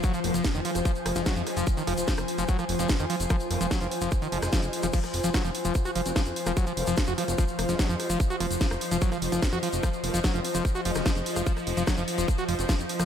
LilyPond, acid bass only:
\new Staff \with { instrumentName = "Acid bass" } { \clef bass \time 4/4 \key f \phrygian \tempo 4 = 147 ges16 f16 r16 f16 r16 ees16 f16 r16 f16 r8 f16 ges16 f16 r16 f16 | r16 ees16 f16 r16 f16 r8 f16 ges16 f16 r16 f16 r16 ees16 f16 r16 | f16 r8 f16 ges16 f16 r16 f16 r16 ees16 f16 r16 f16 r8 f16 | f16 r8 f16 ges16 f16 r16 f16 r16 ges'16 f16 r16 f16 r8 f16 |
ges16 f16 r16 f16 r16 ges'16 f16 r16 f16 r8 f16 ges16 f16 r16 f16 | r16 ges'16 f16 r16 f16 r8 f16 ges16 f16 r16 f16 r16 ges'16 f16 r16 | f16 r8 f16 ges16 f16 r16 f16 r16 ges'16 f16 r16 f16 r8 f16 | f16 r8 f16 ges16 f16 r16 f16 r16 ges'16 f16 r16 f16 r8 f16 | }